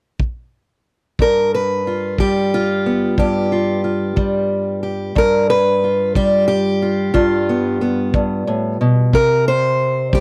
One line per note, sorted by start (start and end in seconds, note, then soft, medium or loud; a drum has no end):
0.20 kick medium
1.19 3.18 G2 medium
1.19 1.53 A#4 medium
1.19 kick medium
1.54 2.20 B4 medium
1.87 2.54 F4 soft
2.18 4.16 G3 medium
2.18 3.18 G4 medium
2.18 kick medium
2.54 3.51 F4 medium
2.86 5.13 B3 soft
3.18 5.14 G2 medium
3.18 4.82 G4 medium
3.18 kick medium
3.52 3.83 F4 soft
3.84 5.12 F4 soft
4.16 5.87 G3 medium
4.16 kick medium
4.83 5.18 G4 soft
5.15 7.13 G2 medium
5.15 5.50 A#4 medium
5.15 kick medium
5.50 6.16 B4 medium
5.84 6.81 F4 soft
6.15 9.10 G3 medium
6.15 6.46 G4 medium
6.15 kick medium
6.48 7.81 G4 medium
6.82 7.13 F4 soft
7.14 8.13 G2 medium
7.14 9.13 F4 medium
7.14 kick medium
7.49 7.80 B3 soft
7.81 9.10 B3 soft
8.14 8.47 G2 medium
8.14 kick medium
8.47 8.80 A2 medium
8.81 9.14 B2 medium
9.13 10.20 C3 medium
9.13 9.47 A#4 medium
9.13 kick medium
9.48 10.14 C5 loud
10.13 10.20 G3 soft
10.13 10.20 G4 medium
10.13 kick medium